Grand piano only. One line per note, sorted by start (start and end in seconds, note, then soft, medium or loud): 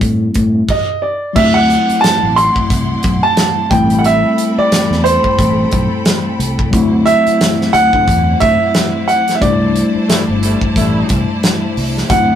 0.00 0.66 E5 medium
0.70 1.04 D#5 medium
1.02 1.37 D5 medium
1.36 1.56 E5 medium
1.54 2.04 F#5 loud
2.01 2.36 A5 loud
2.36 3.26 C6 loud
3.23 3.72 A5 medium
3.70 3.99 G5 medium
3.99 4.04 F#5 medium
4.06 4.60 E5 medium
4.59 5.02 D5 loud
5.04 6.35 C5 loud
7.06 7.75 E5 loud
7.73 8.42 F#5 loud
8.40 9.10 E5 loud
9.08 9.33 F#5 medium
9.35 9.41 E5 medium
9.41 11.39 D5 medium
12.10 12.35 F#5 loud